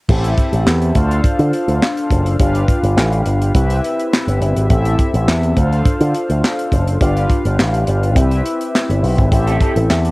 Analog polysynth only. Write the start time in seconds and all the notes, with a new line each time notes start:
0.08 C4 E4 G4 A4 E5
0.95 D4 F4 A4 C5 F5
2.39 D4 F4 G4 B4 F5
3.54 C4 E4 G4 B4 E5
4.70 C4 E4 G4 A4 E5
5.56 D4 F4 A4 C5 F5
7.00 D4 F4 G4 B4 F5
8.16 C4 E4 G4 B4 E5
9.32 C4 E4 G4 A4 E5